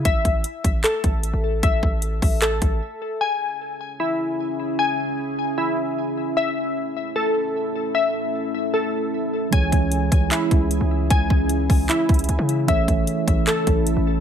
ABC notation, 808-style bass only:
X:1
M:4/4
L:1/16
Q:1/4=152
K:C#m
V:1 name="808-style bass" clef=bass
A,,,2 A,,,2 z2 A,,,2 z2 A,,,3 A,,,3 | A,,,2 A,,,4 A,,,4 A,,,2 z4 | z16 | z16 |
z16 | z16 | C,,2 C,,4 C,,2 z2 C,,3 C,,3 | C,,2 C,,4 C,,2 z2 C,,2 C,, C,3 |
A,,,2 A,,,2 z2 A,,,2 z2 A,,,3 A,,,3 |]